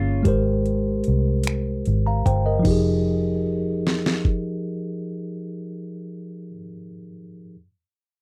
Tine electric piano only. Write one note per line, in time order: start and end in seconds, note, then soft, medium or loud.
0.00 0.20 A#3 medium
0.00 0.21 F4 medium
0.00 0.22 G#4 medium
0.00 0.23 C#5 medium
0.23 2.60 G#3 medium
0.23 2.61 G4 medium
0.23 1.83 A#4 medium
0.28 1.83 C5 medium
2.07 2.25 F5 soft
2.07 2.25 A#5 soft
2.26 2.45 C5 soft
2.26 2.44 G5 medium
2.46 2.84 A#4 soft
2.46 2.83 D#5 soft
2.59 6.48 F3 medium
2.59 6.50 D#4 medium
2.67 6.52 G4 medium
2.67 6.54 G#4 medium